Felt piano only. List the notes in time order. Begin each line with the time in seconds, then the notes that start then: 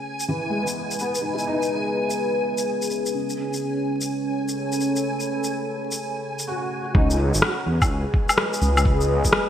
0.28 E3
0.49 G#3
0.62 B3
1.00 B3
1.21 D#4
1.34 E4
1.47 D#4
6.47 F#4
6.95 D#4
7.43 F#4
8.85 B4